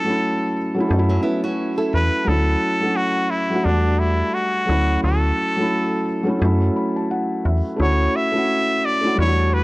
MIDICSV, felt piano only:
0, 0, Header, 1, 2, 480
1, 0, Start_track
1, 0, Key_signature, 2, "major"
1, 0, Tempo, 689655
1, 1579, Time_signature, 4, 2, 24, 8
1, 6707, End_track
2, 0, Start_track
2, 0, Title_t, "Felt piano"
2, 0, Program_c, 0, 0
2, 0, Control_c, 0, 64, 127
2, 0, Note_on_c, 0, 54, 70
2, 0, Note_on_c, 0, 57, 60
2, 0, Note_on_c, 0, 61, 62
2, 0, Note_on_c, 0, 64, 78
2, 30, Note_off_c, 0, 54, 0
2, 30, Note_on_c, 0, 54, 65
2, 43, Note_off_c, 0, 57, 0
2, 43, Note_on_c, 0, 57, 65
2, 57, Note_off_c, 0, 61, 0
2, 57, Note_on_c, 0, 61, 61
2, 69, Note_off_c, 0, 64, 0
2, 69, Note_on_c, 0, 64, 73
2, 368, Note_off_c, 0, 54, 0
2, 375, Note_off_c, 0, 57, 0
2, 382, Note_off_c, 0, 61, 0
2, 388, Note_off_c, 0, 64, 0
2, 519, Note_on_c, 0, 54, 76
2, 530, Note_on_c, 0, 57, 72
2, 546, Note_on_c, 0, 61, 75
2, 559, Note_on_c, 0, 64, 96
2, 597, Note_off_c, 0, 54, 0
2, 607, Note_on_c, 0, 54, 80
2, 608, Note_off_c, 0, 57, 0
2, 618, Note_on_c, 0, 57, 88
2, 620, Note_off_c, 0, 61, 0
2, 628, Control_c, 0, 64, 0
2, 631, Note_on_c, 0, 61, 76
2, 638, Note_off_c, 0, 64, 0
2, 644, Note_on_c, 0, 63, 70
2, 685, Note_off_c, 0, 63, 0
2, 689, Note_on_c, 0, 64, 110
2, 746, Control_c, 0, 64, 127
2, 1390, Note_off_c, 0, 54, 0
2, 1396, Note_off_c, 0, 57, 0
2, 1402, Note_off_c, 0, 61, 0
2, 1431, Note_off_c, 0, 64, 0
2, 1561, Note_on_c, 0, 54, 75
2, 1575, Note_on_c, 0, 57, 70
2, 1589, Control_c, 0, 64, 0
2, 1589, Note_on_c, 0, 61, 72
2, 1602, Note_on_c, 0, 64, 85
2, 1697, Control_c, 0, 64, 127
2, 1840, Note_off_c, 0, 54, 0
2, 1847, Note_off_c, 0, 57, 0
2, 1854, Note_off_c, 0, 61, 0
2, 1860, Note_off_c, 0, 64, 0
2, 1948, Note_on_c, 0, 54, 63
2, 1963, Note_on_c, 0, 57, 62
2, 1974, Note_on_c, 0, 61, 64
2, 1986, Note_on_c, 0, 66, 73
2, 2287, Note_off_c, 0, 54, 0
2, 2295, Note_off_c, 0, 57, 0
2, 2300, Note_off_c, 0, 61, 0
2, 2306, Note_off_c, 0, 66, 0
2, 2435, Note_on_c, 0, 54, 67
2, 2448, Note_on_c, 0, 57, 55
2, 2463, Note_on_c, 0, 61, 71
2, 2475, Note_on_c, 0, 66, 88
2, 2527, Note_on_c, 0, 55, 70
2, 2529, Note_off_c, 0, 57, 0
2, 2536, Note_off_c, 0, 54, 0
2, 2539, Note_on_c, 0, 57, 68
2, 2548, Control_c, 0, 64, 0
2, 2550, Note_off_c, 0, 61, 0
2, 2554, Note_off_c, 0, 66, 0
2, 2554, Note_on_c, 0, 62, 65
2, 2565, Note_on_c, 0, 66, 85
2, 2681, Control_c, 0, 64, 127
2, 3127, Note_off_c, 0, 55, 0
2, 3133, Note_off_c, 0, 57, 0
2, 3140, Note_off_c, 0, 62, 0
2, 3146, Note_off_c, 0, 66, 0
2, 3240, Note_on_c, 0, 54, 72
2, 3250, Note_on_c, 0, 57, 70
2, 3265, Note_on_c, 0, 61, 64
2, 3268, Control_c, 0, 64, 0
2, 3277, Note_on_c, 0, 64, 79
2, 3395, Control_c, 0, 64, 127
2, 3730, Note_off_c, 0, 54, 0
2, 3735, Note_off_c, 0, 57, 0
2, 3742, Note_off_c, 0, 61, 0
2, 3748, Note_off_c, 0, 64, 0
2, 3874, Note_on_c, 0, 54, 65
2, 3886, Note_on_c, 0, 57, 57
2, 3900, Note_on_c, 0, 61, 63
2, 3912, Note_on_c, 0, 64, 77
2, 4210, Note_off_c, 0, 54, 0
2, 4216, Note_off_c, 0, 57, 0
2, 4223, Note_off_c, 0, 61, 0
2, 4229, Note_off_c, 0, 64, 0
2, 4338, Note_on_c, 0, 54, 79
2, 4351, Note_on_c, 0, 57, 87
2, 4364, Note_on_c, 0, 61, 81
2, 4377, Note_on_c, 0, 64, 75
2, 4439, Note_off_c, 0, 54, 0
2, 4450, Note_on_c, 0, 54, 88
2, 4451, Note_off_c, 0, 57, 0
2, 4460, Note_off_c, 0, 61, 0
2, 4462, Note_on_c, 0, 57, 79
2, 4467, Note_off_c, 0, 64, 0
2, 4468, Control_c, 0, 64, 0
2, 4476, Note_on_c, 0, 61, 81
2, 4488, Note_on_c, 0, 64, 105
2, 4579, Control_c, 0, 64, 127
2, 4708, Note_on_c, 0, 83, 69
2, 4836, Note_off_c, 0, 83, 0
2, 4847, Note_on_c, 0, 81, 63
2, 4935, Note_off_c, 0, 81, 0
2, 4947, Note_on_c, 0, 78, 73
2, 5167, Note_off_c, 0, 78, 0
2, 5185, Note_on_c, 0, 76, 64
2, 5231, Note_off_c, 0, 54, 0
2, 5237, Note_off_c, 0, 57, 0
2, 5245, Note_off_c, 0, 61, 0
2, 5250, Note_off_c, 0, 64, 0
2, 5402, Note_on_c, 0, 57, 78
2, 5405, Note_off_c, 0, 76, 0
2, 5414, Note_on_c, 0, 61, 68
2, 5429, Control_c, 0, 64, 0
2, 5429, Note_on_c, 0, 64, 70
2, 5441, Note_on_c, 0, 66, 86
2, 5563, Control_c, 0, 64, 127
2, 5681, Note_off_c, 0, 57, 0
2, 5687, Note_off_c, 0, 61, 0
2, 5694, Note_off_c, 0, 64, 0
2, 5700, Note_off_c, 0, 66, 0
2, 5791, Note_on_c, 0, 57, 67
2, 5803, Note_on_c, 0, 61, 59
2, 5815, Note_on_c, 0, 64, 64
2, 5831, Note_on_c, 0, 66, 78
2, 6129, Note_off_c, 0, 57, 0
2, 6135, Note_off_c, 0, 61, 0
2, 6141, Note_off_c, 0, 64, 0
2, 6149, Note_off_c, 0, 66, 0
2, 6272, Note_on_c, 0, 57, 68
2, 6288, Note_on_c, 0, 61, 69
2, 6299, Note_on_c, 0, 64, 64
2, 6311, Note_on_c, 0, 66, 74
2, 6371, Note_on_c, 0, 55, 72
2, 6375, Note_off_c, 0, 57, 0
2, 6382, Note_off_c, 0, 61, 0
2, 6385, Note_on_c, 0, 57, 73
2, 6388, Note_off_c, 0, 64, 0
2, 6388, Control_c, 0, 64, 0
2, 6394, Note_off_c, 0, 66, 0
2, 6397, Note_on_c, 0, 62, 63
2, 6411, Note_on_c, 0, 64, 65
2, 6449, Note_off_c, 0, 64, 0
2, 6456, Note_on_c, 0, 66, 82
2, 6491, Control_c, 0, 64, 127
2, 6707, Note_off_c, 0, 55, 0
2, 6707, Note_off_c, 0, 57, 0
2, 6707, Note_off_c, 0, 62, 0
2, 6707, Note_off_c, 0, 66, 0
2, 6707, End_track
0, 0, End_of_file